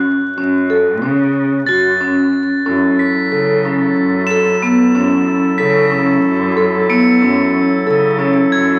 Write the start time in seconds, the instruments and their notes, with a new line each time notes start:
Already playing: cello F#2, vibraphone C#4
0.37 cello F#2, vibraphone C#4
0.70 vibraphone A4
1.02 cello C#3, vibraphone C#4
1.66 cello F#2, vibraphone F#4, crotales A6
2.01 vibraphone C#4
2.66 cello F#2, woodwind section F#3 E4 A4, vibraphone C#4
2.99 crotales B6
3.32 cello C#3, vibraphone A4
3.65 vibraphone C#4
3.97 cello F#2
4.27 crotales E7
4.31 vibraphone A4
4.62 vibraphone B3
4.95 cello F#2, vibraphone C#4
5.58 cello C#3, vibraphone A4, crotales B6
5.92 vibraphone C#4
6.24 cello F#2
6.57 vibraphone A4
6.90 vibraphone B3, crotales C#7
7.22 cello F#2, vibraphone C#4
7.86 cello C#3, vibraphone A4
8.19 vibraphone C#4
8.51 cello F#2, crotales G#6